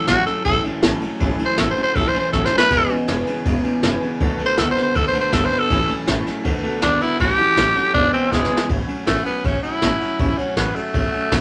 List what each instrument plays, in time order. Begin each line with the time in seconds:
0.07 upright bass A1, steel-string acoustic guitar A2 E3 F#3 A3 C#4 A4, clean electric guitar A2 F#3, tenor saxophone F#4, snare, ride
0.26 clean electric guitar A2 F#3, steel-string acoustic guitar F#3 A3 C#4 A4, tenor saxophone A4, muted upright bass stroke, snare, ride
0.45 upright bass A1, clean electric guitar A2 E3, steel-string acoustic guitar F#3 A3 C#4 A4, tenor saxophone A4, kick, ride
0.64 clean electric guitar A2 E3, steel-string acoustic guitar F#3 A3 C#4 A4, muted upright bass stroke, ride
0.83 upright bass A1, steel-string acoustic guitar A2 E3 F#3 A3 C#4 A4, clean electric guitar A2 F#3, snare, ride
1.01 clean electric guitar A2 F#3, steel-string acoustic guitar F#3 A3 C#4 A4, muted upright bass stroke, ride
1.20 upright bass A1, steel-string acoustic guitar A2 E3 F#3 A3 C#4 A4, clean electric guitar A2 E3, kick, ride
1.38 clean electric guitar A2 E3, steel-string acoustic guitar F#3 A3 C#4 A4, muted upright bass stroke, ride
1.45 tenor saxophone C5
1.57 upright bass A1, steel-string acoustic guitar A2 E3 F#3 A3 C#4 A4, clean electric guitar A2 F#3, tenor saxophone A4, snare, ride
1.70 tenor saxophone C5
1.76 clean electric guitar A2 F#3, steel-string acoustic guitar F#3 A3 C#4 A4, muted upright bass stroke, ride
1.83 tenor saxophone C5
1.95 upright bass A1, clean electric guitar A2 E3, steel-string acoustic guitar F#3 A3 C#4 A4, tenor saxophone A4, kick, ride
2.08 tenor saxophone C5
2.14 clean electric guitar A2 E3, steel-string acoustic guitar F#3 A3 C#4 A4, muted upright bass stroke, ride
2.20 tenor saxophone C5
2.33 upright bass A1, steel-string acoustic guitar A2 E3 F#3 A3 C#4 A4, clean electric guitar A2 F#3, tenor saxophone A4, kick, snare
2.45 tenor saxophone C5, snare
2.51 clean electric guitar A2 F#3, steel-string acoustic guitar F#3 A3 C#4 A4, muted upright bass stroke
2.58 tenor saxophone B4, snare
2.70 upright bass E1, clean electric guitar E2 B2, steel-string acoustic guitar E3 G#3 B3 C#4 G#4, kick, ride
2.89 clean electric guitar E2 B2, steel-string acoustic guitar B3 C#4 G#4, muted upright bass stroke, ride
3.08 upright bass E1, clean electric guitar E2 C#3, steel-string acoustic guitar E3 G#3 B3 C#4 G#4, snare, ride
3.26 clean electric guitar E2 C#3, steel-string acoustic guitar B3 C#4 G#4, ride
3.45 upright bass E1, clean electric guitar E2 B2, steel-string acoustic guitar G#3 B3 C#4 G#4, kick, ride
3.63 clean electric guitar E2 B2, steel-string acoustic guitar B3 C#4 G#4, muted upright bass stroke, ride
3.83 upright bass E1, clean electric guitar E2 C#3, steel-string acoustic guitar E3 G#3 B3 C#4 G#4, snare, ride
4.01 clean electric guitar E2 C#3, steel-string acoustic guitar B3 C#4 G#4, ride
4.20 upright bass D2, steel-string acoustic guitar D3 F#3 B3 F#4 A4, clean electric guitar D3 A3, kick, ride
4.38 clean electric guitar D3 A3, steel-string acoustic guitar B3 F#4 A4, muted upright bass stroke, ride
4.46 tenor saxophone C5
4.57 upright bass D2, steel-string acoustic guitar D3 F#3 B3 F#4 A4, clean electric guitar D3 B3, tenor saxophone A4, snare, ride
4.71 tenor saxophone C5
4.75 clean electric guitar D3 B3, steel-string acoustic guitar B3 F#4 A4, muted upright bass stroke, snare, ride
4.83 tenor saxophone C5
4.94 upright bass D2, clean electric guitar D3 A3, steel-string acoustic guitar F#3 B3 F#4 A4, tenor saxophone A4, kick, ride
5.08 tenor saxophone C5
5.13 clean electric guitar D3 A3, steel-string acoustic guitar B3 F#4 A4, muted upright bass stroke, ride
5.21 tenor saxophone C5
5.32 upright bass G1, steel-string acoustic guitar D3 F#3 B3 F#4 A4, clean electric guitar D3 B3, tenor saxophone A4, kick, snare, ride
5.45 tenor saxophone C5
5.50 clean electric guitar D3 B3, steel-string acoustic guitar B3 F#4 A4, muted upright bass stroke, ride
5.59 tenor saxophone A4
5.70 upright bass A1, steel-string acoustic guitar A2 E3 F#3 A3 C#4 A4, clean electric guitar A2 E3, kick, ride
5.88 clean electric guitar A2 E3, steel-string acoustic guitar F#3 A3 C#4 A4, muted upright bass stroke, ride
6.07 upright bass A1, steel-string acoustic guitar A2 E3 F#3 A3 C#4 A4, clean electric guitar A2 F#3, snare, ride
6.26 clean electric guitar A2 F#3, steel-string acoustic guitar F#3 A3 C#4 A4, muted upright bass stroke, snare, ride
6.44 upright bass D2, clean electric guitar D3 A3, steel-string acoustic guitar F#3 B3 F#4 A4, kick, ride
6.63 clean electric guitar D3 A3, steel-string acoustic guitar B3 F#4 A4, muted upright bass stroke, ride
6.81 upright bass D2, clean electric guitar D3 B3, steel-string acoustic guitar D3 F#3 B3 F#4 A4, tenor saxophone D4, snare, ride
7.00 clean electric guitar D3 B3, steel-string acoustic guitar B3 F#4 A4, tenor saxophone E4, muted upright bass stroke, ride
7.19 upright bass A1, steel-string acoustic guitar A2 E3 F#3 A3 C#4 F#4, clean electric guitar A2 E3, tenor saxophone G4, kick, ride
7.37 clean electric guitar A2 E3, steel-string acoustic guitar F#3 A3 C#4 F#4, muted upright bass stroke, ride
7.56 upright bass A1, steel-string acoustic guitar A2 E3 F#3 A3 C#4 F#4, clean electric guitar A2 F#3, snare, ride
7.75 clean electric guitar A2 F#3, steel-string acoustic guitar F#3 A3 C#4 F#4, muted upright bass stroke, ride
7.93 upright bass E1, clean electric guitar E2 B2, steel-string acoustic guitar G#3 B3 C#4 G#4, tenor saxophone D4, kick, ride
8.12 clean electric guitar E2 B2, steel-string acoustic guitar B3 C#4 G#4, tenor saxophone C4, muted upright bass stroke, ride
8.31 upright bass E1, clean electric guitar E2 C#3, steel-string acoustic guitar E3 G#3 B3 C#4 G#4, tenor saxophone G#3, kick, snare
8.45 snare
8.50 clean electric guitar E2 C#3, steel-string acoustic guitar B3 C#4 G#4, muted upright bass stroke
8.57 snare
8.68 upright bass A1, steel-string acoustic guitar A2 E3 F#3 A3 C#4 F#4, kick, ride
8.86 steel-string acoustic guitar F#3 A3 C#4 F#4, muted upright bass stroke, ride
9.05 upright bass A1, steel-string acoustic guitar A2 E3 F#3 A3 C#4 F#4, tenor saxophone A3, snare, ride
9.24 steel-string acoustic guitar F#3 A3 C#4 F#4, tenor saxophone B3, muted upright bass stroke, ride
9.43 upright bass A1, steel-string acoustic guitar F#3 A3 C#4 F#4, tenor saxophone C#4, kick, ride
9.63 steel-string acoustic guitar F#3 A3 C#4 F#4, tenor saxophone E4, muted upright bass stroke, ride
9.82 upright bass A1, steel-string acoustic guitar A2 E3 F#3 A3 C#4 F#4, snare, ride
10.00 steel-string acoustic guitar F#3 A3 C#4 F#4, muted upright bass stroke, ride
10.19 upright bass A1, steel-string acoustic guitar A2 E3 F#3 A3 C#4 F#4, kick, ride
10.37 steel-string acoustic guitar F#3 A3 C#4 F#4, tenor saxophone C#4, muted upright bass stroke, ride
10.56 upright bass A1, steel-string acoustic guitar A2 E3 F#3 A3 C#4 F#4, tenor saxophone B3, snare, ride
10.74 steel-string acoustic guitar F#3 A3 C#4 F#4, tenor saxophone A3, muted upright bass stroke, ride
10.93 upright bass A1, steel-string acoustic guitar F#3 A3 C#4 F#4, kick, ride
11.11 steel-string acoustic guitar F#3 A3 C#4 F#4, muted upright bass stroke, ride
11.30 upright bass A1, steel-string acoustic guitar A2 E3 F#3 A3 C#4 F#4, kick, snare, ride